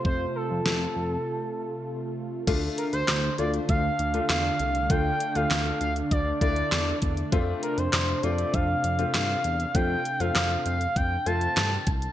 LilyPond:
<<
  \new Staff \with { instrumentName = "Analog synth lead" } { \time 4/4 \key d \minor \tempo 4 = 99 c''8 a'2. r8 | r8 bes'16 c''8. d''8 f''4 f''4 | g''8. f''8. f''8 d''8 d''4 r8 | r8 bes'16 c''8. d''8 f''4 f''4 |
g''8. f''8. f''8 g''8 a''4 r8 | }
  \new Staff \with { instrumentName = "Grand piano" } { \time 4/4 \key d \minor r1 | <a d' f'>8. r8. <a d' f'>8. r8 <a d' f'>8. r8 | <a d' f'>8 r16 <a d' f'>4 r8. <a d' e'>8. r8. | <a c' f'>8. r8. <a c' f'>8. r8 <a c' f'>8. r8 |
<a c' f'>8 r16 <a c' f'>4 r8. <a c' f'>8. r8. | }
  \new Staff \with { instrumentName = "Analog synth pad" } { \time 4/4 \key d \minor << { <a f'>1 | <a d'>1~ | <a d'>1~ | <a d'>1~ |
<a d'>1 | } \\ { c1 | d1~ | d1 | c1~ |
c1 | } >> }
  \new Staff \with { instrumentName = "Analog synth bass" } { \clef bass \time 4/4 \key d \minor f,8 r16 f,16 f,8 f,8 r2 | d,8 r16 d,16 d,8 d,8 d,8 d,8 e,8 c,8 | d,8 r16 d,16 d,8 d,8 d,8 d,8 e,8 e,8 | f,8 r16 f,16 f,8 f,8 f,8 f,8 g,8 e,8 |
f,8 r16 f,16 f,8 f,8 f,8 f,8 g,8 c,8 | }
  \new DrumStaff \with { instrumentName = "Drums" } \drummode { \time 4/4 bd4 sn4 r4 r4 | <cymc hh bd>8 hh16 hh16 <hc hh sn>8 hh16 hh16 <hh bd>8 hh16 hh16 <hc hh sn>8 hh16 hh16 | <hh bd>8 hh16 hh16 <hc hh sn>8 hh16 hh16 <hh bd>8 <hh bd>16 hh16 <hc hh sn>8 <hh bd>16 hh16 | <hh bd>8 hh16 hh16 <hc hh sn>8 hh16 hh16 <hh bd>8 hh16 hh16 <hc hh sn>8 hh16 hh16 |
<hh bd>8 hh16 hh16 <hc hh sn>8 hh16 hh16 <hh bd>8 hh16 hh16 <hc hh sn>8 <hh bd>16 hh16 | }
>>